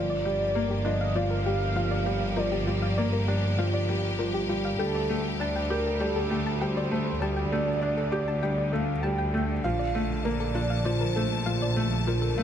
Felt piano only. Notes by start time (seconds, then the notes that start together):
Already playing: F3
0.25 G3
0.55 A#3
0.85 D4
1.15 F3
1.46 G3
1.75 F3
2.06 G3
2.36 F3
2.67 G3
2.98 A#3
3.28 D4
3.59 F3
3.89 G3
4.19 F3
4.49 G3
4.79 G3
5.09 A3
5.40 D4
5.70 G4
6.00 G3
6.30 A3
6.61 G3
6.91 A3
7.22 G3
7.52 A3
7.83 D4
8.12 G4
8.43 G3
8.73 A3
9.04 G3
9.34 A3
9.65 F3
9.95 A3
10.25 A#3
10.55 D4
10.85 F3
11.16 A3
11.46 F3
11.76 A3
12.07 F3
12.38 A3